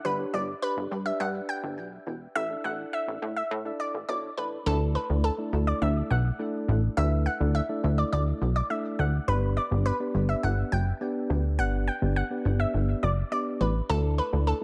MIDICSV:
0, 0, Header, 1, 4, 480
1, 0, Start_track
1, 0, Key_signature, 2, "major"
1, 0, Tempo, 576923
1, 40, Time_signature, 4, 2, 24, 8
1, 12179, End_track
2, 0, Start_track
2, 0, Title_t, "Synth pluck"
2, 0, Program_c, 0, 84
2, 40, Note_on_c, 0, 71, 92
2, 254, Note_off_c, 0, 71, 0
2, 280, Note_on_c, 0, 74, 86
2, 494, Note_off_c, 0, 74, 0
2, 519, Note_on_c, 0, 71, 98
2, 627, Note_off_c, 0, 71, 0
2, 879, Note_on_c, 0, 76, 80
2, 987, Note_off_c, 0, 76, 0
2, 999, Note_on_c, 0, 78, 87
2, 1214, Note_off_c, 0, 78, 0
2, 1239, Note_on_c, 0, 79, 90
2, 1346, Note_off_c, 0, 79, 0
2, 1959, Note_on_c, 0, 76, 114
2, 2174, Note_off_c, 0, 76, 0
2, 2199, Note_on_c, 0, 78, 82
2, 2414, Note_off_c, 0, 78, 0
2, 2440, Note_on_c, 0, 76, 83
2, 2547, Note_off_c, 0, 76, 0
2, 2800, Note_on_c, 0, 76, 76
2, 2907, Note_off_c, 0, 76, 0
2, 3159, Note_on_c, 0, 74, 85
2, 3374, Note_off_c, 0, 74, 0
2, 3400, Note_on_c, 0, 74, 83
2, 3507, Note_off_c, 0, 74, 0
2, 3640, Note_on_c, 0, 71, 76
2, 3747, Note_off_c, 0, 71, 0
2, 3880, Note_on_c, 0, 69, 103
2, 4094, Note_off_c, 0, 69, 0
2, 4120, Note_on_c, 0, 71, 80
2, 4334, Note_off_c, 0, 71, 0
2, 4360, Note_on_c, 0, 69, 93
2, 4467, Note_off_c, 0, 69, 0
2, 4720, Note_on_c, 0, 74, 78
2, 4827, Note_off_c, 0, 74, 0
2, 4841, Note_on_c, 0, 76, 86
2, 5055, Note_off_c, 0, 76, 0
2, 5080, Note_on_c, 0, 78, 77
2, 5187, Note_off_c, 0, 78, 0
2, 5800, Note_on_c, 0, 76, 106
2, 6014, Note_off_c, 0, 76, 0
2, 6040, Note_on_c, 0, 78, 81
2, 6254, Note_off_c, 0, 78, 0
2, 6280, Note_on_c, 0, 76, 85
2, 6387, Note_off_c, 0, 76, 0
2, 6640, Note_on_c, 0, 74, 69
2, 6747, Note_off_c, 0, 74, 0
2, 6760, Note_on_c, 0, 74, 85
2, 6867, Note_off_c, 0, 74, 0
2, 7121, Note_on_c, 0, 74, 78
2, 7227, Note_off_c, 0, 74, 0
2, 7240, Note_on_c, 0, 76, 77
2, 7347, Note_off_c, 0, 76, 0
2, 7480, Note_on_c, 0, 78, 76
2, 7587, Note_off_c, 0, 78, 0
2, 7721, Note_on_c, 0, 71, 99
2, 7935, Note_off_c, 0, 71, 0
2, 7961, Note_on_c, 0, 74, 85
2, 8175, Note_off_c, 0, 74, 0
2, 8201, Note_on_c, 0, 71, 98
2, 8308, Note_off_c, 0, 71, 0
2, 8560, Note_on_c, 0, 76, 75
2, 8667, Note_off_c, 0, 76, 0
2, 8681, Note_on_c, 0, 78, 91
2, 8895, Note_off_c, 0, 78, 0
2, 8920, Note_on_c, 0, 79, 89
2, 9027, Note_off_c, 0, 79, 0
2, 9641, Note_on_c, 0, 78, 112
2, 9855, Note_off_c, 0, 78, 0
2, 9881, Note_on_c, 0, 79, 81
2, 10095, Note_off_c, 0, 79, 0
2, 10120, Note_on_c, 0, 78, 81
2, 10227, Note_off_c, 0, 78, 0
2, 10480, Note_on_c, 0, 76, 77
2, 10587, Note_off_c, 0, 76, 0
2, 10840, Note_on_c, 0, 74, 78
2, 11054, Note_off_c, 0, 74, 0
2, 11081, Note_on_c, 0, 74, 83
2, 11188, Note_off_c, 0, 74, 0
2, 11321, Note_on_c, 0, 71, 77
2, 11428, Note_off_c, 0, 71, 0
2, 11561, Note_on_c, 0, 69, 106
2, 11775, Note_off_c, 0, 69, 0
2, 11800, Note_on_c, 0, 71, 83
2, 12014, Note_off_c, 0, 71, 0
2, 12041, Note_on_c, 0, 69, 90
2, 12147, Note_off_c, 0, 69, 0
2, 12179, End_track
3, 0, Start_track
3, 0, Title_t, "Tine electric piano"
3, 0, Program_c, 1, 4
3, 37, Note_on_c, 1, 62, 81
3, 39, Note_on_c, 1, 67, 74
3, 40, Note_on_c, 1, 71, 75
3, 42, Note_on_c, 1, 74, 89
3, 123, Note_off_c, 1, 62, 0
3, 124, Note_off_c, 1, 67, 0
3, 124, Note_off_c, 1, 71, 0
3, 125, Note_off_c, 1, 74, 0
3, 157, Note_on_c, 1, 62, 81
3, 158, Note_on_c, 1, 67, 71
3, 160, Note_on_c, 1, 71, 73
3, 161, Note_on_c, 1, 73, 84
3, 411, Note_off_c, 1, 62, 0
3, 412, Note_off_c, 1, 67, 0
3, 412, Note_off_c, 1, 71, 0
3, 413, Note_off_c, 1, 73, 0
3, 517, Note_on_c, 1, 62, 75
3, 518, Note_on_c, 1, 67, 70
3, 520, Note_on_c, 1, 71, 67
3, 521, Note_on_c, 1, 74, 84
3, 771, Note_off_c, 1, 62, 0
3, 772, Note_off_c, 1, 67, 0
3, 773, Note_off_c, 1, 71, 0
3, 773, Note_off_c, 1, 74, 0
3, 877, Note_on_c, 1, 62, 80
3, 879, Note_on_c, 1, 67, 72
3, 880, Note_on_c, 1, 71, 70
3, 882, Note_on_c, 1, 74, 87
3, 1552, Note_off_c, 1, 62, 0
3, 1553, Note_off_c, 1, 67, 0
3, 1553, Note_off_c, 1, 71, 0
3, 1554, Note_off_c, 1, 74, 0
3, 2078, Note_on_c, 1, 62, 75
3, 2079, Note_on_c, 1, 64, 66
3, 2081, Note_on_c, 1, 69, 64
3, 2082, Note_on_c, 1, 74, 79
3, 2752, Note_off_c, 1, 62, 0
3, 2753, Note_off_c, 1, 64, 0
3, 2754, Note_off_c, 1, 69, 0
3, 2754, Note_off_c, 1, 74, 0
3, 3038, Note_on_c, 1, 62, 94
3, 3039, Note_on_c, 1, 64, 85
3, 3041, Note_on_c, 1, 69, 81
3, 3042, Note_on_c, 1, 74, 105
3, 3291, Note_off_c, 1, 62, 0
3, 3292, Note_off_c, 1, 64, 0
3, 3293, Note_off_c, 1, 69, 0
3, 3294, Note_off_c, 1, 74, 0
3, 3398, Note_on_c, 1, 62, 85
3, 3399, Note_on_c, 1, 64, 79
3, 3401, Note_on_c, 1, 69, 77
3, 3402, Note_on_c, 1, 73, 97
3, 3567, Note_off_c, 1, 62, 0
3, 3568, Note_off_c, 1, 64, 0
3, 3569, Note_off_c, 1, 69, 0
3, 3569, Note_off_c, 1, 73, 0
3, 3638, Note_on_c, 1, 62, 85
3, 3640, Note_on_c, 1, 64, 78
3, 3641, Note_on_c, 1, 69, 78
3, 3642, Note_on_c, 1, 74, 93
3, 3808, Note_off_c, 1, 62, 0
3, 3808, Note_off_c, 1, 64, 0
3, 3809, Note_off_c, 1, 69, 0
3, 3809, Note_off_c, 1, 74, 0
3, 3878, Note_on_c, 1, 57, 74
3, 3879, Note_on_c, 1, 62, 70
3, 3880, Note_on_c, 1, 64, 74
3, 3881, Note_on_c, 1, 69, 73
3, 3882, Note_on_c, 1, 74, 85
3, 4131, Note_off_c, 1, 57, 0
3, 4132, Note_off_c, 1, 62, 0
3, 4132, Note_off_c, 1, 64, 0
3, 4133, Note_off_c, 1, 69, 0
3, 4133, Note_off_c, 1, 74, 0
3, 4238, Note_on_c, 1, 57, 79
3, 4239, Note_on_c, 1, 62, 76
3, 4240, Note_on_c, 1, 64, 76
3, 4241, Note_on_c, 1, 69, 75
3, 4242, Note_on_c, 1, 74, 86
3, 4407, Note_off_c, 1, 57, 0
3, 4408, Note_off_c, 1, 62, 0
3, 4408, Note_off_c, 1, 64, 0
3, 4409, Note_off_c, 1, 69, 0
3, 4409, Note_off_c, 1, 74, 0
3, 4478, Note_on_c, 1, 57, 81
3, 4479, Note_on_c, 1, 62, 73
3, 4480, Note_on_c, 1, 64, 75
3, 4481, Note_on_c, 1, 69, 75
3, 4482, Note_on_c, 1, 74, 87
3, 5068, Note_off_c, 1, 57, 0
3, 5068, Note_off_c, 1, 62, 0
3, 5069, Note_off_c, 1, 64, 0
3, 5070, Note_off_c, 1, 69, 0
3, 5070, Note_off_c, 1, 74, 0
3, 5317, Note_on_c, 1, 57, 87
3, 5319, Note_on_c, 1, 62, 83
3, 5319, Note_on_c, 1, 64, 80
3, 5320, Note_on_c, 1, 69, 85
3, 5321, Note_on_c, 1, 74, 98
3, 5655, Note_off_c, 1, 57, 0
3, 5656, Note_off_c, 1, 62, 0
3, 5656, Note_off_c, 1, 64, 0
3, 5657, Note_off_c, 1, 69, 0
3, 5657, Note_off_c, 1, 74, 0
3, 5798, Note_on_c, 1, 57, 81
3, 5799, Note_on_c, 1, 62, 75
3, 5800, Note_on_c, 1, 64, 75
3, 5801, Note_on_c, 1, 69, 71
3, 5802, Note_on_c, 1, 71, 87
3, 6051, Note_off_c, 1, 57, 0
3, 6052, Note_off_c, 1, 62, 0
3, 6053, Note_off_c, 1, 64, 0
3, 6053, Note_off_c, 1, 69, 0
3, 6053, Note_off_c, 1, 71, 0
3, 6158, Note_on_c, 1, 57, 81
3, 6159, Note_on_c, 1, 62, 72
3, 6160, Note_on_c, 1, 64, 75
3, 6161, Note_on_c, 1, 69, 75
3, 6162, Note_on_c, 1, 74, 93
3, 6327, Note_off_c, 1, 57, 0
3, 6328, Note_off_c, 1, 62, 0
3, 6328, Note_off_c, 1, 64, 0
3, 6329, Note_off_c, 1, 69, 0
3, 6329, Note_off_c, 1, 74, 0
3, 6398, Note_on_c, 1, 57, 78
3, 6399, Note_on_c, 1, 62, 73
3, 6400, Note_on_c, 1, 64, 74
3, 6401, Note_on_c, 1, 69, 71
3, 6402, Note_on_c, 1, 74, 89
3, 6988, Note_off_c, 1, 57, 0
3, 6989, Note_off_c, 1, 62, 0
3, 6989, Note_off_c, 1, 64, 0
3, 6990, Note_off_c, 1, 69, 0
3, 6990, Note_off_c, 1, 74, 0
3, 7238, Note_on_c, 1, 57, 78
3, 7239, Note_on_c, 1, 62, 71
3, 7240, Note_on_c, 1, 64, 69
3, 7241, Note_on_c, 1, 69, 68
3, 7242, Note_on_c, 1, 74, 84
3, 7576, Note_off_c, 1, 57, 0
3, 7576, Note_off_c, 1, 62, 0
3, 7577, Note_off_c, 1, 64, 0
3, 7577, Note_off_c, 1, 69, 0
3, 7578, Note_off_c, 1, 74, 0
3, 7718, Note_on_c, 1, 59, 80
3, 7719, Note_on_c, 1, 62, 72
3, 7720, Note_on_c, 1, 67, 70
3, 7721, Note_on_c, 1, 71, 73
3, 7722, Note_on_c, 1, 74, 90
3, 7972, Note_off_c, 1, 59, 0
3, 7972, Note_off_c, 1, 62, 0
3, 7973, Note_off_c, 1, 67, 0
3, 7973, Note_off_c, 1, 71, 0
3, 7974, Note_off_c, 1, 74, 0
3, 8079, Note_on_c, 1, 59, 84
3, 8080, Note_on_c, 1, 62, 72
3, 8081, Note_on_c, 1, 67, 74
3, 8082, Note_on_c, 1, 71, 76
3, 8083, Note_on_c, 1, 74, 92
3, 8248, Note_off_c, 1, 59, 0
3, 8248, Note_off_c, 1, 62, 0
3, 8249, Note_off_c, 1, 67, 0
3, 8249, Note_off_c, 1, 71, 0
3, 8250, Note_off_c, 1, 74, 0
3, 8319, Note_on_c, 1, 59, 76
3, 8320, Note_on_c, 1, 62, 73
3, 8321, Note_on_c, 1, 67, 75
3, 8322, Note_on_c, 1, 71, 75
3, 8324, Note_on_c, 1, 74, 90
3, 8909, Note_off_c, 1, 59, 0
3, 8909, Note_off_c, 1, 62, 0
3, 8910, Note_off_c, 1, 67, 0
3, 8910, Note_off_c, 1, 71, 0
3, 8911, Note_off_c, 1, 74, 0
3, 9159, Note_on_c, 1, 59, 91
3, 9160, Note_on_c, 1, 62, 83
3, 9161, Note_on_c, 1, 67, 86
3, 9162, Note_on_c, 1, 71, 79
3, 9163, Note_on_c, 1, 74, 98
3, 9496, Note_off_c, 1, 59, 0
3, 9496, Note_off_c, 1, 62, 0
3, 9497, Note_off_c, 1, 67, 0
3, 9498, Note_off_c, 1, 71, 0
3, 9498, Note_off_c, 1, 74, 0
3, 9639, Note_on_c, 1, 59, 80
3, 9640, Note_on_c, 1, 62, 71
3, 9641, Note_on_c, 1, 67, 69
3, 9642, Note_on_c, 1, 71, 75
3, 9643, Note_on_c, 1, 74, 86
3, 9892, Note_off_c, 1, 59, 0
3, 9893, Note_off_c, 1, 62, 0
3, 9893, Note_off_c, 1, 67, 0
3, 9894, Note_off_c, 1, 71, 0
3, 9894, Note_off_c, 1, 74, 0
3, 9999, Note_on_c, 1, 59, 81
3, 10000, Note_on_c, 1, 62, 73
3, 10001, Note_on_c, 1, 67, 74
3, 10002, Note_on_c, 1, 71, 72
3, 10003, Note_on_c, 1, 74, 92
3, 10168, Note_off_c, 1, 59, 0
3, 10168, Note_off_c, 1, 62, 0
3, 10169, Note_off_c, 1, 67, 0
3, 10169, Note_off_c, 1, 71, 0
3, 10170, Note_off_c, 1, 74, 0
3, 10239, Note_on_c, 1, 59, 81
3, 10240, Note_on_c, 1, 62, 72
3, 10241, Note_on_c, 1, 67, 73
3, 10242, Note_on_c, 1, 71, 73
3, 10243, Note_on_c, 1, 74, 90
3, 10828, Note_off_c, 1, 59, 0
3, 10829, Note_off_c, 1, 62, 0
3, 10829, Note_off_c, 1, 67, 0
3, 10830, Note_off_c, 1, 71, 0
3, 10831, Note_off_c, 1, 74, 0
3, 11078, Note_on_c, 1, 59, 73
3, 11079, Note_on_c, 1, 62, 68
3, 11080, Note_on_c, 1, 67, 69
3, 11081, Note_on_c, 1, 71, 67
3, 11082, Note_on_c, 1, 74, 83
3, 11416, Note_off_c, 1, 59, 0
3, 11416, Note_off_c, 1, 62, 0
3, 11417, Note_off_c, 1, 67, 0
3, 11417, Note_off_c, 1, 71, 0
3, 11418, Note_off_c, 1, 74, 0
3, 11558, Note_on_c, 1, 57, 79
3, 11559, Note_on_c, 1, 62, 72
3, 11561, Note_on_c, 1, 64, 68
3, 11562, Note_on_c, 1, 69, 73
3, 11562, Note_on_c, 1, 74, 83
3, 11812, Note_off_c, 1, 57, 0
3, 11812, Note_off_c, 1, 62, 0
3, 11813, Note_off_c, 1, 64, 0
3, 11813, Note_off_c, 1, 69, 0
3, 11814, Note_off_c, 1, 74, 0
3, 11919, Note_on_c, 1, 57, 81
3, 11920, Note_on_c, 1, 62, 73
3, 11921, Note_on_c, 1, 64, 72
3, 11922, Note_on_c, 1, 69, 73
3, 11923, Note_on_c, 1, 74, 90
3, 12088, Note_off_c, 1, 57, 0
3, 12088, Note_off_c, 1, 62, 0
3, 12089, Note_off_c, 1, 64, 0
3, 12089, Note_off_c, 1, 69, 0
3, 12090, Note_off_c, 1, 74, 0
3, 12179, End_track
4, 0, Start_track
4, 0, Title_t, "Analog synth bass"
4, 0, Program_c, 2, 38
4, 41, Note_on_c, 2, 31, 112
4, 211, Note_off_c, 2, 31, 0
4, 280, Note_on_c, 2, 31, 102
4, 451, Note_off_c, 2, 31, 0
4, 640, Note_on_c, 2, 31, 111
4, 725, Note_off_c, 2, 31, 0
4, 760, Note_on_c, 2, 43, 97
4, 931, Note_off_c, 2, 43, 0
4, 999, Note_on_c, 2, 43, 112
4, 1171, Note_off_c, 2, 43, 0
4, 1360, Note_on_c, 2, 31, 101
4, 1480, Note_on_c, 2, 35, 105
4, 1492, Note_off_c, 2, 31, 0
4, 1651, Note_off_c, 2, 35, 0
4, 1720, Note_on_c, 2, 28, 100
4, 1891, Note_off_c, 2, 28, 0
4, 1960, Note_on_c, 2, 33, 123
4, 2131, Note_off_c, 2, 33, 0
4, 2200, Note_on_c, 2, 33, 117
4, 2371, Note_off_c, 2, 33, 0
4, 2560, Note_on_c, 2, 33, 110
4, 2645, Note_off_c, 2, 33, 0
4, 2681, Note_on_c, 2, 45, 101
4, 2851, Note_off_c, 2, 45, 0
4, 2920, Note_on_c, 2, 45, 114
4, 3091, Note_off_c, 2, 45, 0
4, 3280, Note_on_c, 2, 33, 87
4, 3366, Note_off_c, 2, 33, 0
4, 3400, Note_on_c, 2, 35, 90
4, 3571, Note_off_c, 2, 35, 0
4, 3641, Note_on_c, 2, 33, 92
4, 3811, Note_off_c, 2, 33, 0
4, 3880, Note_on_c, 2, 38, 112
4, 4136, Note_off_c, 2, 38, 0
4, 4241, Note_on_c, 2, 38, 85
4, 4411, Note_off_c, 2, 38, 0
4, 4600, Note_on_c, 2, 38, 94
4, 4771, Note_off_c, 2, 38, 0
4, 4840, Note_on_c, 2, 38, 106
4, 5011, Note_off_c, 2, 38, 0
4, 5081, Note_on_c, 2, 35, 100
4, 5251, Note_off_c, 2, 35, 0
4, 5560, Note_on_c, 2, 33, 105
4, 5731, Note_off_c, 2, 33, 0
4, 5800, Note_on_c, 2, 38, 112
4, 6057, Note_off_c, 2, 38, 0
4, 6160, Note_on_c, 2, 38, 91
4, 6331, Note_off_c, 2, 38, 0
4, 6520, Note_on_c, 2, 38, 92
4, 6691, Note_off_c, 2, 38, 0
4, 6760, Note_on_c, 2, 38, 100
4, 6931, Note_off_c, 2, 38, 0
4, 7001, Note_on_c, 2, 35, 91
4, 7172, Note_off_c, 2, 35, 0
4, 7481, Note_on_c, 2, 38, 94
4, 7651, Note_off_c, 2, 38, 0
4, 7720, Note_on_c, 2, 31, 110
4, 7977, Note_off_c, 2, 31, 0
4, 8080, Note_on_c, 2, 31, 99
4, 8251, Note_off_c, 2, 31, 0
4, 8440, Note_on_c, 2, 31, 96
4, 8611, Note_off_c, 2, 31, 0
4, 8680, Note_on_c, 2, 31, 106
4, 8851, Note_off_c, 2, 31, 0
4, 8920, Note_on_c, 2, 30, 93
4, 9091, Note_off_c, 2, 30, 0
4, 9400, Note_on_c, 2, 38, 94
4, 9640, Note_on_c, 2, 31, 112
4, 9652, Note_off_c, 2, 38, 0
4, 9896, Note_off_c, 2, 31, 0
4, 10000, Note_on_c, 2, 31, 90
4, 10171, Note_off_c, 2, 31, 0
4, 10360, Note_on_c, 2, 31, 94
4, 10531, Note_off_c, 2, 31, 0
4, 10600, Note_on_c, 2, 31, 100
4, 10771, Note_off_c, 2, 31, 0
4, 10841, Note_on_c, 2, 30, 102
4, 11011, Note_off_c, 2, 30, 0
4, 11320, Note_on_c, 2, 33, 97
4, 11491, Note_off_c, 2, 33, 0
4, 11560, Note_on_c, 2, 38, 111
4, 11817, Note_off_c, 2, 38, 0
4, 11921, Note_on_c, 2, 38, 91
4, 12091, Note_off_c, 2, 38, 0
4, 12179, End_track
0, 0, End_of_file